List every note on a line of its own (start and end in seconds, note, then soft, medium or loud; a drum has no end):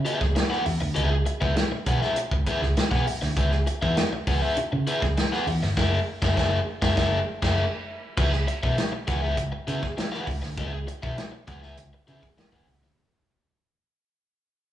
0.05 0.25 G#4 medium
0.05 0.19 B4 medium
0.05 0.19 E5 medium
0.05 closed hi-hat medium
0.20 0.34 C#2 medium
0.20 muted overdriven electric guitar stroke medium
0.20 kick medium
0.20 snare soft
0.35 muted overdriven electric guitar stroke soft
0.35 snare loud
0.35 closed hi-hat medium
0.50 0.64 G#4 medium
0.50 0.64 B4 medium
0.50 0.66 F#5 medium
0.50 snare soft
0.65 0.79 E2 loud
0.65 muted overdriven electric guitar stroke soft
0.65 open hi-hat medium
0.81 0.94 D2 medium
0.81 muted overdriven electric guitar stroke soft
0.95 1.22 C#2 loud
0.95 1.15 G#4 medium
0.95 1.11 B4 medium
0.95 1.10 E5 medium
0.95 closed hi-hat medium
1.11 muted overdriven electric guitar stroke soft
1.26 muted overdriven electric guitar stroke soft
1.26 closed hi-hat medium
1.41 1.55 C#2 medium
1.41 1.55 G#4 medium
1.41 1.54 B4 medium
1.41 1.54 E5 medium
1.41 kick medium
1.56 muted overdriven electric guitar stroke soft
1.56 snare loud
1.56 closed hi-hat medium
1.72 muted picked electric bass stroke soft
1.72 muted overdriven electric guitar stroke soft
1.86 2.00 B1 medium
1.86 2.00 G#4 medium
1.86 2.00 B4 medium
1.86 2.00 F#5 medium
1.86 kick medium
1.86 closed hi-hat medium
2.02 2.15 G#4 soft
2.02 2.15 B4 soft
2.02 2.15 E5 medium
2.02 snare soft
2.16 muted overdriven electric guitar stroke soft
2.16 closed hi-hat loud
2.31 2.45 C#2 medium
2.31 muted overdriven electric guitar stroke medium
2.31 kick medium
2.46 2.64 G#4 loud
2.46 2.62 B4 loud
2.46 2.61 E5 medium
2.46 kick medium
2.46 closed hi-hat medium
2.62 2.75 C#2 medium
2.62 muted overdriven electric guitar stroke medium
2.62 snare soft
2.77 muted picked electric bass stroke soft
2.77 muted overdriven electric guitar stroke soft
2.77 snare medium
2.77 closed hi-hat medium
2.91 3.05 B1 medium
2.91 3.06 G#4 medium
2.91 3.06 B4 medium
2.91 3.07 F#5 medium
2.91 kick medium
2.91 snare soft
3.07 muted overdriven electric guitar stroke soft
3.07 open hi-hat medium
3.22 3.39 D2 medium
3.22 muted overdriven electric guitar stroke soft
3.22 snare soft
3.37 3.63 C#2 loud
3.37 3.54 G#4 medium
3.37 3.52 B4 medium
3.37 3.51 E5 medium
3.37 kick loud
3.37 closed hi-hat loud
3.51 muted overdriven electric guitar stroke soft
3.51 snare soft
3.67 muted overdriven electric guitar stroke soft
3.67 closed hi-hat medium
3.82 3.95 E2 medium
3.82 3.96 G#4 medium
3.82 3.95 B4 medium
3.82 3.95 E5 medium
3.82 kick medium
3.97 muted overdriven electric guitar stroke soft
3.97 snare loud
3.97 closed hi-hat medium
4.12 muted picked electric bass stroke soft
4.12 muted overdriven electric guitar stroke soft
4.27 4.40 C#2 medium
4.27 4.40 G#4 medium
4.27 4.41 B4 medium
4.27 4.41 F#5 medium
4.27 kick loud
4.27 snare soft
4.27 open hi-hat medium
4.42 4.56 G#4 medium
4.42 4.55 B4 medium
4.42 4.55 E5 medium
4.57 muted picked electric bass stroke soft
4.57 muted overdriven electric guitar stroke soft
4.57 closed hi-hat loud
4.72 4.86 C#3 loud
4.72 muted overdriven electric guitar stroke soft
4.87 5.04 G#4 medium
4.87 5.02 B4 medium
4.87 5.01 E5 medium
4.87 closed hi-hat medium
5.02 5.15 C#2 loud
5.02 muted overdriven electric guitar stroke medium
5.02 kick medium
5.02 snare soft
5.17 muted overdriven electric guitar stroke soft
5.17 snare medium
5.17 closed hi-hat medium
5.32 5.46 G#4 medium
5.32 5.46 B4 medium
5.32 5.48 F#5 medium
5.32 snare soft
5.47 5.60 E2 medium
5.47 muted overdriven electric guitar stroke soft
5.47 open hi-hat medium
5.62 5.75 G1 medium
5.62 muted overdriven electric guitar stroke soft
5.62 snare soft
5.77 5.98 F#1 loud
5.77 5.98 G#4 medium
5.77 5.98 A#4 medium
5.77 5.98 E5 medium
5.77 kick medium
5.77 snare loud
5.77 crash medium
6.22 6.35 F#1 loud
6.22 6.36 G#4 loud
6.22 6.35 A#4 loud
6.22 6.35 E5 loud
6.22 kick loud
6.22 snare medium
6.37 6.58 F#1 loud
6.37 6.58 G#4 loud
6.37 6.58 A#4 medium
6.37 6.58 E5 medium
6.37 kick loud
6.37 snare loud
6.82 6.95 F#1 loud
6.82 6.96 G#4 loud
6.82 6.95 A#4 loud
6.82 6.95 E5 loud
6.82 kick loud
6.82 snare loud
6.97 7.18 F#1 loud
6.97 7.19 G#4 loud
6.97 7.18 A#4 loud
6.97 7.18 E5 loud
6.97 kick loud
6.97 snare loud
7.42 7.63 F#1 loud
7.42 7.63 G#4 loud
7.42 7.63 A#4 loud
7.42 7.64 E5 loud
7.42 kick loud
7.42 snare medium
7.42 crash medium
8.17 8.44 C#2 loud
8.17 8.34 G#4 medium
8.17 8.32 B4 medium
8.17 8.31 E5 medium
8.17 kick loud
8.17 crash medium
8.32 muted overdriven electric guitar stroke medium
8.32 snare soft
8.47 muted overdriven electric guitar stroke soft
8.47 closed hi-hat medium
8.63 8.76 B1 medium
8.63 8.77 G#4 medium
8.63 8.76 B4 medium
8.63 8.76 E5 medium
8.63 kick medium
8.78 muted overdriven electric guitar stroke soft
8.78 snare loud
8.78 closed hi-hat medium
8.92 muted overdriven electric guitar stroke soft
9.07 9.34 C#2 loud
9.07 9.21 G#4 medium
9.07 9.21 B4 medium
9.07 9.21 F#5 medium
9.07 kick loud
9.07 snare soft
9.07 closed hi-hat medium
9.22 9.36 G#4 medium
9.22 9.36 B4 medium
9.22 9.36 E5 medium
9.37 9.51 C#2 medium
9.37 muted overdriven electric guitar stroke soft
9.37 kick medium
9.37 closed hi-hat loud
9.52 muted overdriven electric guitar stroke soft
9.67 9.81 C#3 loud
9.67 9.84 G#4 medium
9.67 9.82 B4 medium
9.67 9.82 E5 medium
9.67 closed hi-hat medium
9.83 muted overdriven electric guitar stroke medium
9.83 kick medium
9.83 snare soft
9.97 muted overdriven electric guitar stroke soft
9.97 snare loud
9.97 closed hi-hat medium
10.12 10.27 G#4 medium
10.12 10.27 B4 medium
10.12 10.29 F#5 medium
10.12 snare soft
10.27 10.41 C#2 medium
10.27 muted overdriven electric guitar stroke soft
10.27 kick medium
10.27 open hi-hat medium
10.42 10.56 D2 medium
10.42 muted overdriven electric guitar stroke soft
10.42 snare soft
10.57 10.84 C#2 loud
10.57 10.78 G#4 medium
10.57 10.73 B4 medium
10.57 10.72 E5 medium
10.57 kick loud
10.57 closed hi-hat medium
10.73 muted overdriven electric guitar stroke soft
10.87 muted overdriven electric guitar stroke soft
10.87 closed hi-hat medium
11.02 11.16 B1 medium
11.02 11.16 G#4 medium
11.02 11.16 B4 medium
11.02 11.16 E5 medium
11.02 kick medium
11.17 muted overdriven electric guitar stroke soft
11.17 snare loud
11.17 closed hi-hat medium
11.32 muted overdriven electric guitar stroke soft
11.47 11.74 C#2 medium
11.47 11.61 G#4 medium
11.47 11.61 B4 medium
11.47 11.61 F#5 medium
11.47 kick medium
11.47 closed hi-hat medium
11.63 11.76 G#4 soft
11.63 11.76 B4 medium
11.63 11.76 E5 medium
11.63 snare soft
11.77 11.91 C#2 medium
11.77 muted overdriven electric guitar stroke medium
11.77 closed hi-hat loud
11.93 muted overdriven electric guitar stroke soft
12.07 12.21 C#3 medium
12.07 12.25 G#4 medium
12.07 12.22 B4 medium
12.07 12.21 E5 loud
12.07 closed hi-hat medium
12.23 muted overdriven electric guitar stroke medium
12.23 kick medium
12.23 snare soft
12.38 muted overdriven electric guitar stroke soft
12.38 snare loud
12.38 closed hi-hat medium
12.53 12.67 G#4 medium
12.53 12.67 B4 medium
12.53 12.68 F#5 medium
12.53 kick medium
12.53 snare soft
12.68 12.81 C#2 medium
12.68 muted overdriven electric guitar stroke soft
12.68 open hi-hat medium
12.83 12.96 D2 medium
12.83 muted overdriven electric guitar stroke soft
12.83 snare soft